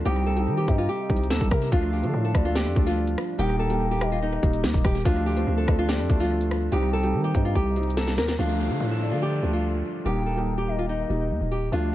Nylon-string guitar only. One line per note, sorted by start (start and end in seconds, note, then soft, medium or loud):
0.05 0.23 G4 loud
0.26 0.56 A4 medium
0.57 0.74 G4 medium
0.78 0.87 F4 medium
0.89 1.28 G4 medium
1.30 1.47 A4 medium
1.51 1.68 A#4 medium
1.72 1.89 F4 loud
1.93 2.22 G4 medium
2.25 2.41 A4 medium
2.45 2.54 F4 medium
2.56 2.85 G4 medium
2.86 3.36 F4 medium
3.39 3.56 G4 loud
3.59 3.89 A4 medium
3.91 4.08 G4 medium
4.12 4.20 F4 medium
4.22 4.81 D#4 medium
4.85 5.02 G4 medium
5.06 5.23 F4 medium
5.26 5.56 G4 medium
5.58 5.75 A4 medium
5.79 5.87 F4 medium
5.88 6.18 G4 medium
6.20 6.69 F4 medium
6.72 6.89 G4 loud
6.93 7.22 A4 medium
7.24 7.41 G4 medium
7.45 7.53 F4 medium
7.55 7.95 G4 medium
7.97 8.14 A4 medium
8.18 8.35 A#4 medium
8.39 8.56 F4 medium
8.59 8.89 G4 medium
8.91 9.08 A4 medium
9.12 9.20 F4 medium
9.22 9.52 G4 medium
9.53 10.02 F4 medium
10.06 10.23 G4 loud
10.26 10.55 A4 medium
10.58 10.75 G4 medium
10.79 10.87 F4 medium
10.89 11.48 D#4 medium
11.51 11.68 G4 medium
11.72 11.89 F4 medium